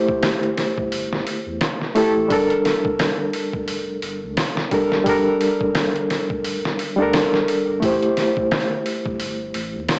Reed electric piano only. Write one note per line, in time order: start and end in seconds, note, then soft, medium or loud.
0.00 1.95 A3 medium
0.00 1.96 E4 medium
0.00 1.97 G4 medium
0.00 2.33 C5 medium
1.95 2.26 A3 loud
1.95 2.27 E4 medium
1.95 2.28 G4 medium
1.95 2.28 A4 loud
2.28 4.67 G3 medium
2.28 4.68 D4 medium
2.28 4.69 A4 medium
2.33 4.70 A#4 loud
4.72 5.03 G3 medium
4.72 5.03 D4 medium
4.72 5.04 A4 medium
4.72 5.04 A#4 medium
5.04 6.94 G3 medium
5.04 6.95 D4 medium
5.04 6.96 A4 medium
5.09 6.96 A#4 medium
6.96 7.77 G3 medium
6.96 7.78 D4 medium
6.96 7.79 A4 medium
7.02 7.80 A#4 loud
7.80 9.99 A3 medium
7.80 9.99 E4 medium
7.80 9.99 G4 medium
7.85 9.99 C5 medium